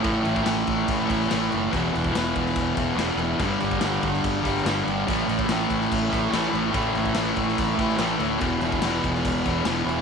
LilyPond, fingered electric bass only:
\new Staff \with { instrumentName = "Fingered electric bass" } { \clef bass \time 4/4 \key a \dorian \tempo 4 = 144 a,,8 a,,8 a,,8 a,,8 a,,8 a,,8 a,,8 fis,,8 | e,,8 e,,8 e,,8 e,,8 e,,8 e,,8 e,,8 e,,8 | g,,8 g,,8 g,,8 g,,8 g,,8 g,,8 g,,8 g,,8 | a,,8 a,,8 a,,8 a,,8 a,,8 a,,8 a,,8 a,,8 |
a,,8 a,,8 a,,8 a,,8 a,,8 a,,8 a,,8 d,8 | e,,8 e,,8 e,,8 e,,8 e,,8 e,,8 e,,8 e,,8 | }